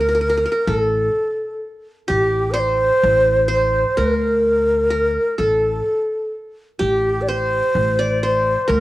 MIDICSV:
0, 0, Header, 1, 4, 480
1, 0, Start_track
1, 0, Tempo, 943396
1, 2028, Time_signature, 10, 3, 24, 8
1, 4478, End_track
2, 0, Start_track
2, 0, Title_t, "Ney"
2, 0, Program_c, 0, 77
2, 0, Note_on_c, 0, 70, 101
2, 346, Note_on_c, 0, 69, 79
2, 354, Note_off_c, 0, 70, 0
2, 827, Note_off_c, 0, 69, 0
2, 1088, Note_on_c, 0, 67, 103
2, 1280, Note_on_c, 0, 74, 73
2, 1287, Note_off_c, 0, 67, 0
2, 1319, Note_on_c, 0, 72, 122
2, 1327, Note_off_c, 0, 74, 0
2, 1794, Note_off_c, 0, 72, 0
2, 1797, Note_on_c, 0, 72, 100
2, 2032, Note_on_c, 0, 70, 107
2, 2039, Note_off_c, 0, 72, 0
2, 2743, Note_off_c, 0, 70, 0
2, 2746, Note_on_c, 0, 69, 82
2, 3207, Note_off_c, 0, 69, 0
2, 3472, Note_on_c, 0, 67, 96
2, 3672, Note_on_c, 0, 74, 73
2, 3680, Note_off_c, 0, 67, 0
2, 3705, Note_on_c, 0, 72, 118
2, 3712, Note_off_c, 0, 74, 0
2, 4186, Note_off_c, 0, 72, 0
2, 4194, Note_on_c, 0, 72, 91
2, 4423, Note_on_c, 0, 70, 114
2, 4430, Note_off_c, 0, 72, 0
2, 4478, Note_off_c, 0, 70, 0
2, 4478, End_track
3, 0, Start_track
3, 0, Title_t, "Qanun"
3, 0, Program_c, 1, 107
3, 0, Note_on_c, 1, 72, 55
3, 2, Note_on_c, 1, 70, 43
3, 41, Note_off_c, 1, 70, 0
3, 43, Note_on_c, 1, 70, 46
3, 73, Note_off_c, 1, 70, 0
3, 75, Note_on_c, 1, 70, 50
3, 88, Note_off_c, 1, 72, 0
3, 104, Note_off_c, 1, 70, 0
3, 106, Note_on_c, 1, 70, 44
3, 148, Note_off_c, 1, 70, 0
3, 150, Note_on_c, 1, 70, 57
3, 188, Note_off_c, 1, 70, 0
3, 190, Note_on_c, 1, 70, 51
3, 230, Note_off_c, 1, 70, 0
3, 232, Note_on_c, 1, 70, 53
3, 261, Note_off_c, 1, 70, 0
3, 263, Note_on_c, 1, 70, 51
3, 342, Note_on_c, 1, 69, 63
3, 373, Note_off_c, 1, 70, 0
3, 938, Note_off_c, 1, 69, 0
3, 1058, Note_on_c, 1, 67, 78
3, 1290, Note_on_c, 1, 72, 81
3, 1696, Note_off_c, 1, 67, 0
3, 1769, Note_off_c, 1, 72, 0
3, 1771, Note_on_c, 1, 72, 80
3, 2020, Note_on_c, 1, 70, 75
3, 2308, Note_off_c, 1, 72, 0
3, 2493, Note_off_c, 1, 70, 0
3, 2495, Note_on_c, 1, 70, 69
3, 2738, Note_on_c, 1, 69, 66
3, 2768, Note_off_c, 1, 70, 0
3, 3334, Note_off_c, 1, 69, 0
3, 3456, Note_on_c, 1, 67, 77
3, 3707, Note_on_c, 1, 72, 76
3, 4064, Note_on_c, 1, 74, 80
3, 4094, Note_off_c, 1, 67, 0
3, 4186, Note_off_c, 1, 72, 0
3, 4188, Note_on_c, 1, 72, 78
3, 4415, Note_on_c, 1, 70, 78
3, 4478, Note_off_c, 1, 70, 0
3, 4478, Note_off_c, 1, 72, 0
3, 4478, Note_off_c, 1, 74, 0
3, 4478, End_track
4, 0, Start_track
4, 0, Title_t, "Upright bass"
4, 0, Program_c, 2, 32
4, 0, Note_on_c, 2, 38, 88
4, 226, Note_off_c, 2, 38, 0
4, 343, Note_on_c, 2, 33, 91
4, 544, Note_off_c, 2, 33, 0
4, 1067, Note_on_c, 2, 33, 86
4, 1467, Note_off_c, 2, 33, 0
4, 1544, Note_on_c, 2, 33, 98
4, 1945, Note_off_c, 2, 33, 0
4, 2024, Note_on_c, 2, 38, 96
4, 2625, Note_off_c, 2, 38, 0
4, 2742, Note_on_c, 2, 33, 77
4, 2944, Note_off_c, 2, 33, 0
4, 3463, Note_on_c, 2, 33, 81
4, 3864, Note_off_c, 2, 33, 0
4, 3943, Note_on_c, 2, 33, 93
4, 4345, Note_off_c, 2, 33, 0
4, 4423, Note_on_c, 2, 38, 106
4, 4478, Note_off_c, 2, 38, 0
4, 4478, End_track
0, 0, End_of_file